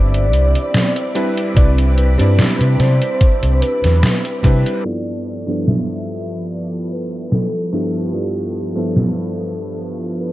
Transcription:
Already playing: G1 G3 C4 D4 E4 B4 D5 E5 B5 D6
0.14 closed hi-hat
0.33 C2, closed hi-hat
0.55 closed hi-hat
0.74 snare, closed hi-hat
0.96 closed hi-hat
1.15 G3 C4 D4 E4 B4, closed hi-hat
1.37 closed hi-hat
1.56 C2 G3 C4 D4 E4 B4 D5, kick, closed hi-hat
1.78 closed hi-hat
1.98 B4, closed hi-hat
2.18 G2 G3 C4 D4 E4 D5, closed hi-hat
2.39 snare, closed hi-hat
2.61 C3, closed hi-hat
2.80 C3 C5, snare, closed hi-hat
3.02 closed hi-hat
3.21 kick, closed hi-hat
3.43 C2, closed hi-hat
3.62 B4, closed hi-hat
3.84 E2, snare, closed hi-hat
4.03 snare, closed hi-hat
4.25 closed hi-hat
4.43 C3 G3 C4 D4 E4 B4, kick, closed hi-hat
4.66 closed hi-hat
4.84 G2 F3 B3 D4 E4 A4 B4 D5 E5 G5
5.47 G2 F3 B3 D4 E4 A4
5.68 E5, snare
6.50 D5
6.91 B4
7.32 A4, snare
7.72 G2 F3 B3 D4 E4 G4 A4
8.13 G2 F3 B3 D4 E4 A4 A5
8.75 G2 F3 B3 D4 E4 A4
8.96 snare
10.20 B4

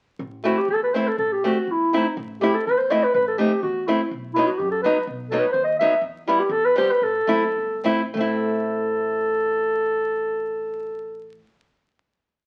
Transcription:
0.19 A1
0.44 A3 C4 E4 F#4
0.58 G4
0.68 E2 A4
0.83 B4
0.94 A3 C4 E4 C5
1.08 A4
1.18 A1 A4
1.33 G4
1.44 A3 C4 F#4 G4
1.67 E2 E4
1.93 A3 C4 D#4 E4
2.17 A1
2.41 A3 C4 E4 G4
2.54 A4
2.67 E2 B4
2.78 C5
2.90 A3 C4 E4 D#5
3.03 B4
3.14 A1 B4
3.28 A4
3.38 A3 C4 D#4 G4
3.62 E2 F#4
3.87 A3 C4 E4
4.11 B1
4.34 F#3 B3 E4
4.38 D#4
4.47 F#4
4.58 F#2 G4
4.71 A4
4.82 F#3 B3 D#4 B4
5.07 B1
5.30 F#3 B3 D#4 A4
5.39 B4
5.52 D#2 C5
5.64 D#5
5.79 F#3 B3 D#4 E5
6.01 E2
6.27 G3 B3 E4
6.39 G4
6.49 E2 A4
6.65 B4
6.76 G3 B3 G4 C5
6.91 B4
7.01 A1 A4
7.27 F#1 A3 C4 E4
7.56 G1
7.84 A1 A3 C4 E4
8.14 A1 A3 C4 A4
8.21 E4

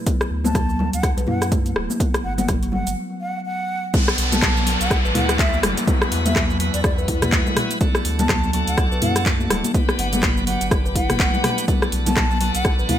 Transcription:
0.07 B3, kick, closed hi-hat, shaker
0.21 cross-stick, shaker
0.31 D2
0.44 B3 A5, high conga, low conga, shaker
0.55 F#3, kick, cross-stick, closed hi-hat, mid tom, high conga, shaker
0.69 F#3, high conga, shaker
0.79 F#3, low conga
0.93 D2 F#5, closed hi-hat, shaker
1.03 D2, kick, cross-stick, closed hi-hat, shaker
1.17 B1 B4, closed hi-hat, low conga, shaker
1.27 F#2 E4 F#5, mid tom, high conga
1.42 cross-stick, closed hi-hat, shaker
1.52 A3, kick, closed hi-hat, shaker
1.66 closed hi-hat, high conga, shaker
1.76 D1, cross-stick
1.90 high conga, shaker
2.00 B3, kick, closed hi-hat, shaker
2.14 cross-stick, closed hi-hat, shaker
2.24 G1 F#5
2.38 B3 F#5, closed hi-hat, high conga, low conga, shaker
2.48 F#3, kick, cross-stick, closed hi-hat, mid tom, high conga, shaker
2.63 F#3, closed hi-hat, high conga, shaker
2.72 F#3 F#5, low conga
2.87 G1, closed hi-hat, shaker
3.21 F#5
3.46 F#5
3.94 B3 D4 F#4 A4, kick, closed hi-hat, downlifter, low conga, shaker
4.08 cross-stick, shaker
4.18 B1, open hi-hat
4.32 B3 A5, closed hi-hat, high conga, low conga, shaker
4.42 F#3, kick, cross-stick, clap, closed hi-hat, mid tom, high conga, shaker
4.56 F#3, high conga, shaker
4.66 F#3 B3 D4 F#4 A4, open hi-hat
4.80 B1 F#5, closed hi-hat, shaker
4.91 B1, kick, cross-stick, closed hi-hat, shaker
5.05 A1 B4, shaker
5.14 D2 E4 F#5, mid tom, open hi-hat, high conga, low conga
5.29 cross-stick, closed hi-hat, shaker
5.39 A3 E5, kick, clap, closed hi-hat, shaker
5.53 high conga, shaker
5.63 F#1, cross-stick, open hi-hat, low conga
5.77 closed hi-hat, high conga, shaker
5.87 B3 E4 F#4 B4, kick, closed hi-hat, low conga, shaker
6.02 cross-stick, shaker
6.12 E2, open hi-hat
6.25 B3 E5, closed hi-hat, high conga, low conga, shaker
6.36 F#3, kick, cross-stick, clap, closed hi-hat, mid tom, high conga, shaker
6.50 F#3, high conga, shaker
6.60 F#3 B3 E4 F#4 B4, open hi-hat
6.74 E2 D5, closed hi-hat, shaker
6.84 E2 D5, kick, cross-stick, closed hi-hat, shaker
6.98 B4, shaker
7.08 E4, kick, open hi-hat
7.22 cross-stick, closed hi-hat, mid tom, high conga, shaker
7.32 A3, kick, clap, closed hi-hat, shaker
7.47 low conga, shaker
7.57 cross-stick, mid tom, open hi-hat, high conga
7.71 closed hi-hat, shaker
7.81 A3 B3 D4 F#4 A4, kick, closed hi-hat, low conga, shaker
7.95 cross-stick, shaker
8.05 D2, open hi-hat
8.19 B3 A5, closed hi-hat, high conga, low conga, shaker
8.29 F#3, kick, cross-stick, clap, closed hi-hat, mid tom, high conga, shaker
8.43 F#3, high conga, shaker
8.53 F#3 A3 D4 F#4 A4, open hi-hat
8.67 D2 F#5, closed hi-hat, shaker
8.78 D2, kick, cross-stick, closed hi-hat, shaker
8.92 B1 B4, shaker
9.02 F#2 E4 F#5, mid tom, open hi-hat, high conga, low conga
9.16 cross-stick, closed hi-hat, shaker
9.26 A3, kick, clap, closed hi-hat, shaker
9.40 high conga, shaker
9.50 D1, cross-stick, open hi-hat, low conga
9.64 closed hi-hat, high conga, shaker
9.74 B3 D4 G4 B4, kick, closed hi-hat, low conga, shaker
9.89 cross-stick, shaker
9.99 G1 F#5, open hi-hat
10.13 B3 F#5, closed hi-hat, high conga, low conga, shaker
10.23 F#3, kick, cross-stick, clap, closed hi-hat, mid tom, shaker
10.37 F#3, high conga, shaker
10.47 F#3 B3 D4 G4 B4 F#5, open hi-hat
10.61 G1, closed hi-hat, shaker
10.71 G1, kick, cross-stick, closed hi-hat, shaker
10.86 B4, shaker
10.95 E4 F#5, kick, open hi-hat
11.10 cross-stick, mid tom, open hi-hat, high conga, shaker
11.19 A3 F#5, kick, clap, closed hi-hat, shaker
11.34 low conga, shaker
11.44 cross-stick, mid tom, open hi-hat, high conga
11.58 closed hi-hat, shaker
11.68 B3 D4 F#4 A4, kick, closed hi-hat, low conga, shaker
11.82 cross-stick, shaker
11.92 B1, open hi-hat
12.06 B3 A5, closed hi-hat, high conga, low conga, shaker
12.16 F#3, kick, cross-stick, clap, closed hi-hat, mid tom, shaker
12.31 F#3, high conga, shaker
12.41 F#3 B3 D4 F#4 A4, open hi-hat
12.54 B1 F#5, closed hi-hat, shaker
12.65 B1, kick, cross-stick, closed hi-hat, shaker
12.79 A1 B4, shaker
12.89 D2 E4 F#5, mid tom, open hi-hat, high conga, low conga

